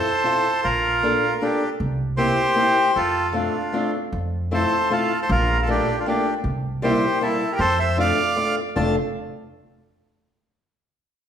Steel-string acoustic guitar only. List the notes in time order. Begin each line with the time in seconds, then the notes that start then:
0.24 C4 E4 F4 A4
1.03 A#3 D4 F4 A4
1.41 A#3 D4 F4 A4
2.17 A#3 C4 E4 G4
2.55 A#3 C4 E4 G4
3.33 A3 C4 D4 F4
3.73 A3 C4 D4 F4
4.51 A3 C4 E4 F4
4.90 A3 C4 E4 F4
5.67 A3 A#3 D4 F4
6.06 A3 A#3 D4 F4
6.82 G3 A#3 C4 E4
7.21 G3 A#3 C4 E4
7.97 A3 C4 D4 F4
8.36 A3 C4 D4 F4
8.76 A3 C4 D4 F4